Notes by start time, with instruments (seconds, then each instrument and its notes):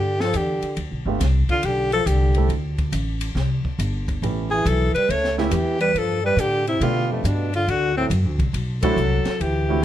Already playing: upright bass G2, trombone D3, alto saxophone G4
0.20 trombone F3, alto saxophone A4, snare
0.34 upright bass E2, trombone D3, alto saxophone G4, hi-hat pedal, ride
0.62 muted upright bass stroke, ride
0.77 upright bass D2, ride
0.91 upright bass B1
1.05 upright bass G1, grand piano A3 B3 D4 F4 G4
1.20 upright bass C2, snare, hi-hat pedal, ride
1.49 trombone D3, alto saxophone F4, muted upright bass stroke, kick, ride
1.63 upright bass B1, trombone D3, alto saxophone G4, ride
1.92 trombone F3, alto saxophone A4, ride
2.06 upright bass C2, trombone D3, alto saxophone G4, hi-hat pedal, ride
2.34 grand piano A3 C4 D4 E4 A4, ride
2.49 upright bass D2, ride
2.78 kick, ride
2.92 upright bass A1, hi-hat pedal, ride
3.21 ride
3.35 upright bass C2, snare
3.64 muted upright bass stroke, kick
3.79 upright bass G1, hi-hat pedal, ride
4.08 kick, ride
4.22 upright bass A1, grand piano A3 B3 C#4 E4 G4, ride
4.50 trombone E3, alto saxophone G#4
4.65 upright bass B1, trombone E3, alto saxophone A4, hi-hat pedal, ride
4.94 trombone G3, alto saxophone B4, muted upright bass stroke, ride
5.09 upright bass C#2, trombone A3, alto saxophone C#5, ride
5.24 snare
5.38 trombone C#3, grand piano A3 B3 C#4 E4 G4, alto saxophone E4, snare
5.51 upright bass E2, trombone E3, alto saxophone G4, hi-hat pedal, ride
5.80 trombone G3, alto saxophone B4, ride
5.94 upright bass G2, trombone F3, alto saxophone A4, ride
6.24 trombone G3, alto saxophone B4
6.36 upright bass A2, trombone D3, alto saxophone G4, hi-hat pedal, ride
6.67 trombone C3, alto saxophone E4, ride
6.81 upright bass B2, trombone D3, grand piano A3 B3 D4 F4 G4, alto saxophone F4, ride
7.10 trombone F2, alto saxophone A3
7.24 upright bass G2, trombone B2, alto saxophone D4, hi-hat pedal, ride
7.54 trombone D3, alto saxophone F4, ride
7.68 upright bass D2, trombone D3, alto saxophone F#4, ride
7.97 trombone A2, alto saxophone C4
8.10 upright bass F#2, hi-hat pedal, ride
8.25 upright bass D2
8.38 upright bass C2, kick, ride
8.53 upright bass B1, ride
8.83 trombone F#3, grand piano A3 C4 D4 E4 F#4, alto saxophone A4, kick, ride
8.96 upright bass C2, hi-hat pedal
9.25 muted upright bass stroke, snare, ride
9.39 upright bass D2, trombone E3, alto saxophone G4, ride
9.69 grand piano A3 C4 D4 E4 F#4